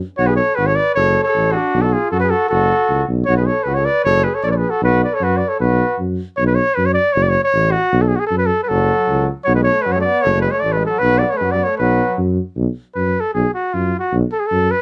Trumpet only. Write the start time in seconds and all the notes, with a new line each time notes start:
0.18 C#5
0.27 B4
0.36 C#5
0.55 B4
0.66 C#5
0.76 D5
0.95 C#5
1.24 C#5
1.52 F#4
1.82 A4
1.92 G#4
2.11 A4
2.20 B4
2.30 A4
2.49 A4
3.25 C#5
3.37 B4
3.46 C#5
3.63 B4
3.75 C#5
3.85 D5
4.04 C#5
4.24 B4
4.35 C#5
4.43 C#5 D5
4.51 C#5 D5
4.57 B4
4.70 A4
4.84 B4
5.04 D5
5.14 C#5
5.24 B4
5.37 D5
5.48 C#5
5.60 B4
6.37 C#5
6.47 B4
6.55 C#5
6.75 B4
6.86 C#5
6.94 D5
7.13 C#5
7.23 D5
7.29 C#5
7.44 C#5
7.72 F#4
8.02 A4
8.08 G#4
8.16 F#4 G#4
8.27 A4
8.38 B4
8.46 A4
8.63 B4
8.68 A4
9.44 C#5
9.55 B4
9.63 C#5
9.82 B4
9.92 C#5
10.01 D5
10.21 C#5
10.41 B4
10.51 C#5
10.60 D5
10.72 B4
10.86 A4
10.99 B4
11.18 D5
11.30 C#5
11.37 B4
11.52 D5
11.63 C#5
11.78 B4
12.95 B4
13.20 A4
13.34 G#4
13.54 F#4
13.74 F4
13.99 F#4
14.32 A4
14.40 G#4
14.46 A4
14.71 B4